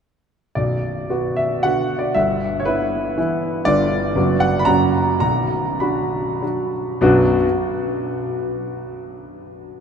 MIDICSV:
0, 0, Header, 1, 2, 480
1, 0, Start_track
1, 0, Key_signature, 2, "minor"
1, 0, Tempo, 526316
1, 515, Time_signature, 3, 2, 24, 8
1, 1969, Tempo, 501253
1, 4369, Tempo, 544959
1, 4849, Tempo, 594648
1, 7249, Tempo, 532860
1, 8708, End_track
2, 0, Start_track
2, 0, Title_t, "Grand piano"
2, 0, Program_c, 0, 0
2, 505, Note_on_c, 0, 74, 59
2, 512, Note_on_c, 0, 23, 38
2, 513, Note_on_c, 0, 35, 50
2, 678, Control_c, 0, 64, 127
2, 990, Note_off_c, 0, 23, 0
2, 990, Note_off_c, 0, 35, 0
2, 1001, Note_on_c, 0, 59, 43
2, 1003, Note_on_c, 0, 66, 44
2, 1245, Note_on_c, 0, 76, 66
2, 1253, Note_off_c, 0, 74, 0
2, 1461, Note_off_c, 0, 59, 0
2, 1462, Note_off_c, 0, 66, 0
2, 1485, Note_on_c, 0, 78, 80
2, 1493, Note_off_c, 0, 76, 0
2, 1497, Note_on_c, 0, 50, 35
2, 1498, Note_on_c, 0, 59, 35
2, 1499, Note_on_c, 0, 66, 44
2, 1507, Control_c, 0, 64, 0
2, 1809, Note_off_c, 0, 78, 0
2, 1813, Note_on_c, 0, 74, 58
2, 1931, Note_off_c, 0, 50, 0
2, 1932, Note_off_c, 0, 59, 0
2, 1932, Note_off_c, 0, 66, 0
2, 1956, Note_on_c, 0, 76, 78
2, 1964, Note_on_c, 0, 31, 51
2, 1964, Note_on_c, 0, 43, 54
2, 1967, Note_off_c, 0, 74, 0
2, 2174, Control_c, 0, 64, 127
2, 2382, Note_off_c, 0, 76, 0
2, 2388, Note_on_c, 0, 73, 63
2, 2439, Note_off_c, 0, 31, 0
2, 2439, Note_off_c, 0, 43, 0
2, 2442, Note_on_c, 0, 71, 74
2, 2456, Note_off_c, 0, 73, 0
2, 2456, Note_on_c, 0, 59, 45
2, 2458, Note_on_c, 0, 64, 54
2, 2902, Note_off_c, 0, 59, 0
2, 2903, Note_off_c, 0, 64, 0
2, 2942, Note_on_c, 0, 52, 47
2, 2944, Note_on_c, 0, 59, 45
2, 2950, Control_c, 0, 64, 0
2, 2950, Note_on_c, 0, 64, 53
2, 3366, Note_off_c, 0, 52, 0
2, 3367, Note_off_c, 0, 59, 0
2, 3370, Note_off_c, 0, 64, 0
2, 3396, Note_off_c, 0, 71, 0
2, 3398, Note_on_c, 0, 74, 102
2, 3405, Note_on_c, 0, 43, 61
2, 3406, Note_on_c, 0, 31, 57
2, 3407, Note_on_c, 0, 50, 53
2, 3414, Note_on_c, 0, 59, 45
2, 3419, Note_on_c, 0, 65, 49
2, 3574, Control_c, 0, 64, 127
2, 3846, Note_off_c, 0, 50, 0
2, 3849, Note_off_c, 0, 59, 0
2, 3852, Note_off_c, 0, 65, 0
2, 3869, Note_off_c, 0, 31, 0
2, 3869, Note_off_c, 0, 43, 0
2, 3877, Note_on_c, 0, 30, 60
2, 3878, Note_on_c, 0, 54, 48
2, 3880, Note_on_c, 0, 42, 62
2, 3887, Note_on_c, 0, 59, 43
2, 3890, Control_c, 0, 64, 0
2, 3892, Note_on_c, 0, 66, 46
2, 4053, Control_c, 0, 64, 127
2, 4117, Note_on_c, 0, 78, 87
2, 4125, Note_off_c, 0, 74, 0
2, 4299, Note_off_c, 0, 78, 0
2, 4301, Note_on_c, 0, 83, 72
2, 4329, Note_off_c, 0, 54, 0
2, 4334, Note_off_c, 0, 59, 0
2, 4336, Note_off_c, 0, 66, 0
2, 4347, Note_off_c, 0, 42, 0
2, 4351, Note_off_c, 0, 30, 0
2, 4355, Note_on_c, 0, 82, 94
2, 4361, Note_on_c, 0, 42, 58
2, 4365, Note_on_c, 0, 30, 54
2, 4365, Note_on_c, 0, 54, 45
2, 4368, Note_off_c, 0, 83, 0
2, 4371, Note_on_c, 0, 61, 45
2, 4377, Note_on_c, 0, 66, 46
2, 4381, Control_c, 0, 64, 0
2, 4571, Control_c, 0, 64, 127
2, 4813, Note_off_c, 0, 54, 0
2, 4815, Note_off_c, 0, 61, 0
2, 4819, Note_off_c, 0, 66, 0
2, 4829, Note_off_c, 0, 82, 0
2, 4832, Note_off_c, 0, 42, 0
2, 4833, Note_off_c, 0, 30, 0
2, 4842, Note_on_c, 0, 82, 83
2, 4851, Note_on_c, 0, 23, 46
2, 4851, Note_on_c, 0, 35, 51
2, 4857, Control_c, 0, 64, 0
2, 5031, Control_c, 0, 64, 127
2, 5318, Note_off_c, 0, 35, 0
2, 5319, Note_off_c, 0, 23, 0
2, 5326, Note_on_c, 0, 83, 56
2, 5329, Note_off_c, 0, 82, 0
2, 5334, Note_on_c, 0, 62, 44
2, 5336, Note_on_c, 0, 66, 47
2, 5793, Note_off_c, 0, 62, 0
2, 5794, Note_off_c, 0, 66, 0
2, 5823, Note_on_c, 0, 54, 37
2, 5826, Note_on_c, 0, 62, 37
2, 5830, Note_on_c, 0, 66, 41
2, 5837, Control_c, 0, 64, 0
2, 6063, Note_off_c, 0, 83, 0
2, 6274, Note_off_c, 0, 54, 0
2, 6275, Note_off_c, 0, 62, 0
2, 6277, Note_off_c, 0, 66, 0
2, 6302, Note_on_c, 0, 35, 84
2, 6306, Note_on_c, 0, 42, 70
2, 6306, Note_on_c, 0, 54, 71
2, 6308, Note_on_c, 0, 62, 75
2, 6311, Note_on_c, 0, 59, 81
2, 6312, Note_on_c, 0, 66, 78
2, 6445, Control_c, 0, 64, 127
2, 6570, Note_off_c, 0, 35, 0
2, 6572, Note_off_c, 0, 42, 0
2, 6572, Note_off_c, 0, 54, 0
2, 6573, Note_off_c, 0, 62, 0
2, 6574, Note_off_c, 0, 59, 0
2, 6575, Note_off_c, 0, 66, 0
2, 6659, Control_c, 0, 64, 0
2, 8708, End_track
0, 0, End_of_file